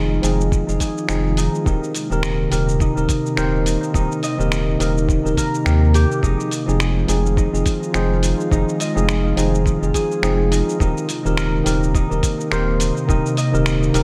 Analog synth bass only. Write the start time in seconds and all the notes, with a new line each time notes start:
Already playing: F1
0.23 F1
0.69 F1
1.09 F1
1.66 D#1
2.11 D#1
2.52 D#1
2.97 D#1
3.38 D#1
3.94 D#1
4.39 D#1
4.80 D#1
5.25 D#1
5.66 D#2
6.23 F1
6.68 F1
7.09 F1
7.54 F1
7.95 F1
8.52 F1
8.97 F1
9.37 F1
9.83 F1
10.23 F1
10.81 D#1
11.26 D#1
11.66 D#1
12.11 D#1
12.52 D#1
13.09 D#1
13.54 D#1
13.94 D#1